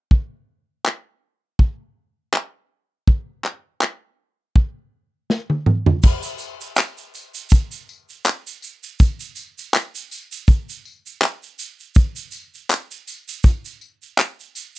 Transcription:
0.11 kick
0.86 clap
1.59 kick
2.34 clap
3.08 kick
3.44 clap
3.81 clap
4.56 kick
5.30 snare
5.50 high tom
5.66 mid tom
5.86 floor tom
6.03 kick, crash, shaker
6.23 shaker
6.38 tambourine, shaker
6.61 shaker
6.76 clap, shaker
6.97 shaker
7.14 tambourine, shaker
7.34 shaker
7.50 kick, shaker
7.72 shaker
7.89 tambourine
8.09 shaker
8.25 clap, shaker
8.47 shaker
8.62 tambourine, shaker
8.83 shaker
9.00 kick, shaker
9.20 shaker
9.36 tambourine, shaker
9.58 shaker
9.74 clap, shaker
9.95 shaker
10.11 tambourine, shaker
10.32 shaker
10.48 kick, shaker
10.69 shaker
10.85 tambourine
11.06 shaker
11.22 clap, shaker
11.43 shaker
11.59 tambourine, shaker
11.80 shaker
11.95 kick, shaker
12.16 shaker
12.31 tambourine, shaker
12.54 shaker
12.70 clap, shaker
12.91 shaker
13.07 tambourine, shaker
13.28 shaker
13.43 kick, shaker
13.65 shaker
13.81 tambourine
14.02 shaker
14.18 clap, shaker
14.40 shaker
14.55 tambourine, shaker
14.76 shaker

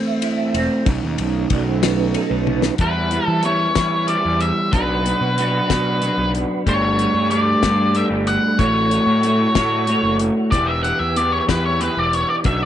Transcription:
Already playing: E3 A3 C4
0.06 E5
0.22 E4, ride
0.54 E1 C4, ride
0.84 B1 B2 A3 C#4 D#4, kick, ride
1.03 D#2
1.18 B1 D#3, ride
1.50 B1 F#3 D5, kick, ride
1.66 C5
1.80 B3 B4, snare, ride
2.13 D#4 A4, ride
2.30 B1 B4
2.47 B3, high tom
2.62 snare
2.78 E2 E3 G3 B3 E4 G4 B4 E5 B5, kick, closed hi-hat
3.11 G3 B3 E4, closed hi-hat
3.26 E3 A4
3.43 E3 G3 B3 E4 C#5, closed hi-hat
3.75 E3 G3 B3 E4, kick, snare, closed hi-hat
4.07 E3 G3 B3 E4 D5, closed hi-hat
4.25 E2
4.41 E5, closed hi-hat
4.71 B1 B2 F#3 B3 D4 F#4 B4 F#5 B5, kick, closed hi-hat
5.06 B3 D4 F#4, closed hi-hat
5.21 B2
5.38 F#3 B3 D4 F#4, closed hi-hat
5.70 B2 F#3 B3 D4 F#4, kick, snare, closed hi-hat
6.01 F#3 B3 D4 F#4, closed hi-hat
6.18 B1
6.35 closed hi-hat
6.66 G1 G3 A3 D4 G4 A4 C#5, kick, closed hi-hat
6.99 A3 D4 G4, closed hi-hat
7.14 G2
7.30 G3 A3 D4 G4 D5, closed hi-hat
7.62 G2 G3 A3 D4 G4, kick, snare, closed hi-hat
7.94 G3 A3 D4 G4 E5, closed hi-hat
8.10 G1
8.27 F#5, closed hi-hat
8.59 A1 A3 E4 F#4 C#5 F#5 C#6, kick, closed hi-hat
8.90 E4 F#4 C#5, closed hi-hat
9.07 A2
9.23 A3 E4 F#4 C#5, closed hi-hat
9.55 A2 A3 E4 F#4 C#5, kick, snare, closed hi-hat
9.87 A3 E4 F#4 C#5, closed hi-hat
10.03 F#1
10.20 closed hi-hat
10.51 E1 E3 B3 E4 G4 B4 D5 G5 E6, kick, closed hi-hat
10.67 E5
10.83 B3 E4 G4 F#5, closed hi-hat
10.99 E2 E5
11.16 E3 B3 E4 G4 D5, closed hi-hat
11.32 C#5
11.48 E2 E3 B3 E4 G4 B4, kick, snare, closed hi-hat
11.66 C#5
11.81 E3 B3 E4 G4 B4, closed hi-hat
11.97 E1 D5
12.13 C#5, closed hi-hat
12.30 D5
12.43 B1 B2 F#3 B3 D4 F#4 E5 F#5 D6, kick, closed hi-hat

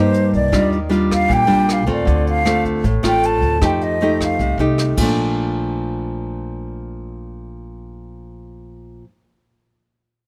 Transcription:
Already playing: G2 A#3 D#4 G4 C5
0.14 closed hi-hat
0.33 C2 D5, kick, closed hi-hat
0.52 D#2 D#3 G3 D4 F4, kick, cross-stick, closed hi-hat
0.72 closed hi-hat
0.89 G3 D4 F4, closed hi-hat
1.11 F5, kick, cross-stick, closed hi-hat
1.28 A#1 A#2, kick, closed hi-hat
1.33 G5
1.47 A#1 G3 D4 F4, closed hi-hat
1.69 cross-stick, closed hi-hat
1.73 F5
1.86 D#2 A3 C4 F4, kick, closed hi-hat
1.91 D5
2.05 D2 D3, kick, closed hi-hat
2.27 F5, closed hi-hat
2.45 A3 C4 F4, cross-stick, closed hi-hat
2.65 kick, closed hi-hat
2.84 A1 A2, kick, closed hi-hat
3.03 A1 A3 C4 F4 G5, cross-stick, closed hi-hat
3.23 A5, closed hi-hat
3.42 D2, kick, closed hi-hat
3.62 F2 F3 A3 D#4 G4 G5, kick, cross-stick, closed hi-hat
3.81 D#5, closed hi-hat
4.01 A3 D#4 G4, closed hi-hat
4.20 F5, kick, cross-stick, closed hi-hat
4.39 C2 C3, kick, closed hi-hat
4.58 C2 A3 D#4 G4, closed hi-hat
4.78 cross-stick, closed hi-hat
4.97 A#1 A#2 F3 A3, kick, crash
5.03 D4

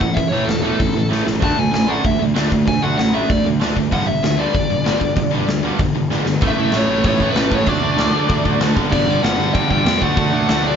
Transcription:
0.00 A1 A2 E3 F#5, kick
0.14 A1 A2 E3 E5, kick, open hi-hat
0.29 A1 A2 C#5
0.33 E3 A3
0.45 E1 A2 A4, snare, open hi-hat
0.49 E3
0.62 A2 E3 A3 A4
0.79 A1 A2 E3, kick, open hi-hat
0.96 A1 A2 E3
1.11 A1 A2 E3 A3, snare
1.27 A1 A2 E3, snare
1.42 D2 D3 A3 D4 A5, kick, open hi-hat
1.59 D2 D3 A3 G#5
1.73 A1 D3 A3 G#5, snare, open hi-hat
1.88 D3 A3 D4 F#5
2.04 D2 D3 A3 E5, kick, open hi-hat
2.19 D2 D3 A3
2.36 D2 D3 A3 D4, snare, open hi-hat
2.52 D2 D3 A3, kick
2.67 D2 D3 A3 G#5, kick, open hi-hat
2.82 D2 D3 A3 D4 F#5
2.98 A1 D3 A3 F#5, snare, open hi-hat
3.14 D3 A3 D4 E5
3.30 D2 D3 A3 D5, kick, open hi-hat
3.46 D2 D3 A3
3.61 D2 D3 A3 D4, snare, open hi-hat
3.77 D2 D3 A3, kick
3.91 G1 G2 D3 G3 F#5, kick, open hi-hat
4.06 G1 G2 D3 E5
4.23 D2 G2 D3 E5, snare, open hi-hat
4.37 G2 D3 G3 D5
4.53 G1 G2 D3, kick, open hi-hat
4.70 G1 G2 D3
4.84 G1 G2 D3 G3, snare, open hi-hat
5.00 G1 G2 D3, kick
5.16 G1 G2 D3, kick, open hi-hat
5.31 G1 G2 D3 G3
5.47 D2 G2 D3, snare, open hi-hat
5.63 G2 D3 G3
5.79 G1 G2 D3, kick, open hi-hat
5.94 G1 G2 D3
6.10 G1 G2 D3 G3, snare
6.25 G1 G2 D3, snare
6.41 A1 A2 E3 A3, kick, crash
6.47 E5
6.57 A1 A2 E3 A3
6.72 A1 A2 E3 A3, snare, crash
6.77 C#5
6.89 A1 A2 E3 A3
7.04 A1 A2 E3 A3 C#5, kick, crash
7.20 A1 A2 E3 A3, kick
7.31 B4
7.35 A1 A2 E3 A3, snare, crash
7.51 A1 A2 E3 A3 C#5, kick
7.66 D2 D3 A3 D4 D5, kick, crash
7.81 D2 D3 A3 D4
7.97 D2 D3 A3 D4, snare, crash
8.11 D2 D3 A3 D4
8.28 D2 D3 A3 D4, kick, crash
8.45 D2 D3 A3 D4, kick
8.60 D2 D3 A3 D4, snare, crash
8.75 G1 G2 D3 G3, kick
8.89 G1 G2 D3 G3 D5, kick, crash
9.06 G1 G2 D3 G3
9.21 G1 G2 D3 G3 F#5, snare, crash
9.37 G1 G2 D3 G3
9.54 G1 G2 D3 G3 G5, kick, crash
9.68 G1 G2 D3 G3 G5, kick
9.86 E2 G2 D3 G3, snare, crash
10.01 D2 D3 A3 D4 F#5, kick
10.17 D2 D3 A3 D4, kick, crash
10.32 D2 D3 A3 D4
10.49 D2 D3 A3 D4 F#5, snare, crash
10.64 D2 D3 A3 D4 D5

